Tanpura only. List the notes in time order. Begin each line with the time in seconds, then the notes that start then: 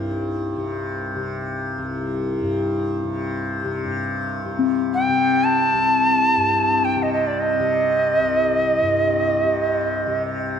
Already playing: C2 G2 C3
0.56 C3
1.16 C3
1.78 C2
2.41 G2
3.03 C3
3.64 C3
3.84 G2
4.45 C3
5.09 C3
5.73 C2
6.36 G2
6.96 C3
7.60 C3
8.20 C2
8.82 G2
9.44 C3
10.06 C3